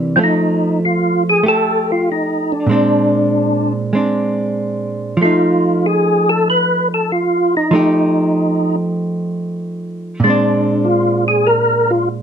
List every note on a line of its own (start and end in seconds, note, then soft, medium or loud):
0.00 0.18 C3 medium
0.00 0.16 E3 soft
0.00 0.18 A#3 medium
0.00 0.20 D4 medium
0.16 2.69 F3 soft
0.16 1.42 A3 soft
0.16 0.19 C4 medium
0.24 0.80 D#4 medium
0.85 1.24 F4 medium
1.30 1.45 G#4 medium
1.44 2.69 A3 soft
1.44 2.71 G4 soft
1.48 1.91 A4 medium
1.92 2.10 F4 medium
2.12 2.54 D#4 medium
2.52 3.73 D4 medium
2.67 5.19 A#2 soft
2.67 3.92 G#3 medium
2.71 3.94 C4 medium
2.71 3.95 D4 medium
3.93 5.17 G#3 soft
3.93 5.21 C4 soft
3.93 5.21 D4 soft
5.17 7.70 F3 soft
5.21 7.72 A3 soft
5.21 7.74 D#4 medium
5.21 5.86 F4 medium
5.86 6.29 G#4 medium
6.29 6.48 A4 medium
6.50 6.88 B4 loud
6.94 7.12 A4 medium
7.12 7.55 F4 medium
7.57 8.76 D#4 medium
7.71 10.22 F3 medium
7.71 10.23 A3 medium
7.71 10.24 D#4 medium
7.75 10.24 G4 medium
10.20 12.22 A#2 medium
10.20 10.88 D4 medium
10.24 12.22 G#3 medium
10.24 12.22 C4 medium
10.30 12.22 D4 medium
10.85 11.25 F4 medium
11.28 11.48 G#4 medium
11.47 11.92 A#4 loud
11.91 12.09 F4 medium